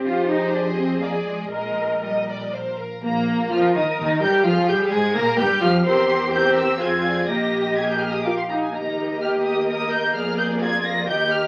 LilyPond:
<<
  \new Staff \with { instrumentName = "Violin section" } { \time 3/4 \key ees \major \tempo 4 = 126 ees''2. | ees''4 ees''4 f''8 r8 | bes''4 f'''8 ees'''8 ees'''8 g'''8 | f'''8 g'''8 aes'''8 bes'''8 g'''8 f'''8 |
c'''4 g'''8 e'''8 aes'''4 | bes'''4 aes'''16 g'''16 f'''16 ees'''16 d'''16 c'''16 bes''16 aes''16 | bes''4 f'''8 ees'''8 ees'''8 g'''8 | f'''8 g'''8 aes'''8 bes'''8 g'''8 f'''8 | }
  \new Staff \with { instrumentName = "Violin section" } { \time 3/4 \key ees \major << { c''2 d''4 | ees''4 ees''8 d''8 c''8 bes'8 | bes4 f'8 ees'8 ees'8 g'8 | f'8 g'8 aes'8 bes'8 g'8 f'8 |
c''4 c''4 c''8 d''8 | ees''2 f''8 r8 | ees''2. | d''2 ees''4 | } \\ { aes'2. | bes'4 r2 | r2. | r2. |
bes'4 bes'4 aes'4 | g'4 aes'4 bes'8 r8 | bes'2.~ | bes'2. | } >> }
  \new Staff \with { instrumentName = "Cello section" } { \time 3/4 \key ees \major f'8 ees'8 d'8 c'8 bes8 aes8 | aes4 g4 r4 | r4 bes'2 | aes'2 g'4 |
g'2 f'4 | g'2~ g'8 r8 | ees'4 g'4 bes'4 | aes'4 f'4 g'4 | }
  \new Staff \with { instrumentName = "Viola section" } { \time 3/4 \key ees \major << { g'2 aes'4 | bes'2~ bes'8 r8 | bes4 f8 ees8 ees8 g8 | f8 g8 aes8 bes8 g8 f8 |
g'4 g'4 f'4 | g'4 bes4 f'8 ees'8 | g'2. | aes'2 g'4 | } \\ { r2. | r2. | r2. | r2. |
c'4 c'4 c'4 | bes4 r2 | bes2.~ | bes2. | } >> }
  \new Staff \with { instrumentName = "Double bass section" } { \clef bass \time 3/4 \key ees \major f,2. | bes,,2~ bes,,8 r8 | bes,,4 f,8 ees,8 ees,8 g,8 | f,8 g,8 aes,8 bes,8 g,8 f,8 |
e,2 f,4 | bes,,2~ bes,,8 r8 | ees,2. | f,2 ees,4 | }
>>